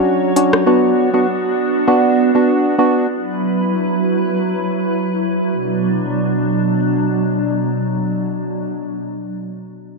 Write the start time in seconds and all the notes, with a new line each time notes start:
Already playing: F#3 C#4 D4 F#4 C#5, downlifter
0.36 C#4 D4 F#4, closed hi-hat
0.53 cross-stick
0.66 B3 D4 F#4
1.14 B3 D4 F#4
1.88 B3 D4 F#4
2.35 B3 D4 F#4
2.78 B3 D4 F#4
3.09 F#3 E4 B4
5.52 B2 F#3 D4